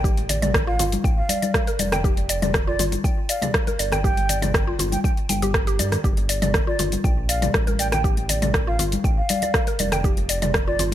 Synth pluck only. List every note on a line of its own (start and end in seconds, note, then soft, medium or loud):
0.04 0.11 G4 medium
0.29 0.41 D5 medium
0.42 0.54 D5 medium
0.67 0.74 F4 medium
0.79 0.92 F4 medium
1.04 1.11 G5 medium
1.29 1.41 D5 medium
1.42 1.54 D5 medium
1.67 1.74 A#4 medium
1.79 1.91 D5 medium
1.93 1.99 G5 loud
2.04 2.11 G4 medium
2.29 2.41 D5 medium
2.42 2.54 D5 medium
2.67 2.74 F4 medium
2.79 2.92 F4 medium
3.04 3.11 G5 medium
3.29 3.41 D5 medium
3.42 3.54 D5 medium
3.67 3.74 A#4 medium
3.79 3.91 D5 medium
3.92 3.99 G5 loud
4.04 4.11 G4 medium
4.29 4.41 D5 medium
4.42 4.54 D5 medium
4.67 4.74 F4 medium
4.79 4.92 F4 medium
5.04 5.11 G5 medium
5.29 5.41 G5 medium
5.42 5.53 G4 loud
5.67 5.78 G4 loud
5.79 5.91 D5 medium
6.04 6.11 G4 medium
6.29 6.41 D5 medium
6.42 6.54 D5 medium
6.67 6.74 F4 medium
6.79 6.92 F4 medium
7.04 7.11 G5 medium
7.29 7.41 D5 medium
7.42 7.54 D5 medium
7.67 7.74 A#4 medium
7.79 7.91 D5 medium
7.92 7.99 G5 loud
8.04 8.11 G4 medium
8.29 8.41 D5 medium
8.42 8.54 D5 medium
8.67 8.74 F4 medium
8.79 8.92 F4 medium
9.05 9.11 G5 medium
9.29 9.41 D5 medium
9.43 9.54 D5 medium
9.68 9.74 A#4 medium
9.80 9.91 D5 medium
9.92 9.99 G5 loud
10.04 10.11 G4 medium
10.29 10.41 D5 medium
10.42 10.54 D5 medium
10.68 10.74 F4 medium
10.79 10.92 F4 medium